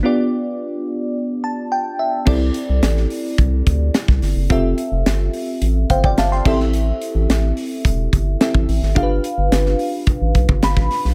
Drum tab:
CC |----------------|x---------------|--------------x-|----------------|
HH |----------------|--x-x-o-x-x-x-o-|x-x-x-o-x-x-x---|x-x-x-o-x-x-x-o-|
SD |----------------|----oo------ooo-|----o-------oooo|----o-------o--o|
BD |----------------|o-------o-o--o--|o---------oo--o-|--------o-o--o--|

CC |----------------|
HH |x-x-x-o-x-x-x-o-|
SD |----oo------oooo|
BD |o-------o-oo-o--|